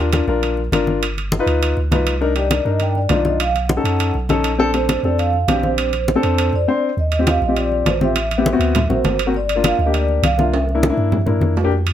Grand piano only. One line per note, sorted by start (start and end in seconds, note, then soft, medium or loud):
0.13 0.24 D4 medium
0.13 0.24 F4 medium
0.13 0.24 A#4 medium
0.28 0.59 D4 medium
0.28 0.59 F4 medium
0.28 0.59 A#4 loud
0.72 1.02 D4 medium
0.72 1.02 F4 medium
0.72 1.02 A#4 loud
1.39 1.76 D#4 medium
1.39 1.76 F4 medium
1.39 1.76 B4 loud
1.91 2.12 D#4 medium
1.91 2.12 F4 medium
1.91 2.13 B4 medium
2.21 2.31 D4 medium
2.21 2.32 D#4 medium
2.21 2.32 A#4 loud
2.35 2.46 D4 medium
2.35 2.46 D#4 medium
2.35 2.46 G4 medium
2.50 2.61 D4 medium
2.50 2.61 D#4 medium
2.50 2.61 A#4 medium
2.65 2.97 D4 medium
2.65 2.97 D#4 medium
2.65 2.97 A#4 medium
3.10 3.40 D4 medium
3.10 3.40 D#4 medium
3.10 3.40 F4 medium
3.76 4.13 C#4 medium
3.76 4.13 D#4 medium
3.76 4.14 A4 medium
4.29 4.50 C#4 medium
4.29 4.50 D#4 medium
4.29 4.51 A4 medium
4.29 4.57 D#5 medium
4.58 4.69 C4 medium
4.58 4.69 D4 medium
4.58 4.70 A4 loud
4.74 4.84 C4 medium
4.74 4.84 D4 medium
4.74 4.85 A4 medium
4.88 4.99 C4 medium
4.88 4.99 D4 medium
4.88 5.00 A4 medium
5.04 5.35 C4 medium
5.04 5.35 D4 medium
5.04 5.36 A4 medium
5.48 5.90 C4 medium
5.48 5.90 D4 medium
5.48 5.90 G4 medium
6.15 6.52 C4 medium
6.15 6.52 D4 medium
6.15 6.52 A4 medium
6.68 6.88 C4 medium
6.68 6.88 D4 medium
6.68 6.89 C5 medium
7.19 7.40 C4 medium
7.19 7.40 F4 medium
7.19 7.40 G4 medium
7.48 7.85 C4 medium
7.48 7.85 F4 medium
7.48 7.85 G4 medium
8.01 8.16 C4 medium
8.01 8.16 F4 medium
8.01 8.16 G4 medium
8.38 8.48 B3 medium
8.38 8.48 C4 medium
8.38 8.49 G4 medium
8.52 8.75 B3 medium
8.52 8.75 C4 medium
8.52 8.75 F#4 medium
8.89 9.15 A#3 medium
8.89 9.16 C4 medium
8.89 9.16 F#4 medium
9.26 9.34 A#3 medium
9.26 9.34 C4 medium
9.26 9.34 F#4 medium
9.56 9.77 A#3 medium
9.56 9.77 D4 medium
9.56 9.77 F4 medium
9.86 10.22 A#3 medium
9.86 10.23 D4 medium
9.86 10.23 G4 medium
10.38 10.53 A#3 medium
10.38 10.53 D4 medium
10.38 10.53 F4 medium
10.75 10.85 A#3 medium
10.75 10.85 D4 medium
10.75 10.86 E4 medium
10.90 11.16 A#3 medium
10.90 11.16 D4 medium
10.90 11.16 E4 medium
11.26 11.53 A#3 medium
11.26 11.53 D4 medium
11.26 11.53 E4 medium
11.64 11.71 A#3 medium
11.64 11.72 D4 medium
11.64 11.72 G4 medium